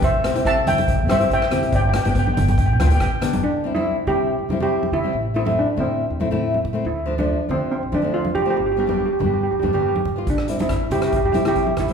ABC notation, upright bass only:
X:1
M:4/4
L:1/16
Q:1/4=140
K:C
V:1 name="Upright bass" clef=bass
C,,3 C,,3 C,,4 G,,2 z3 C,, | G,,,3 G,,,3 G,,,4 D,,2 z3 G,,, | C,,6 C,3 G,, C,4 C,2 | A,,,6 A,,3 E,, A,,4 A,,2 |
D,,6 D,3 A,,, D,4 D,2 | G,,,6 G,,3 D,, G,,4 G,,2 | C,,6 C,3 G,, C,4 A,,,2 |]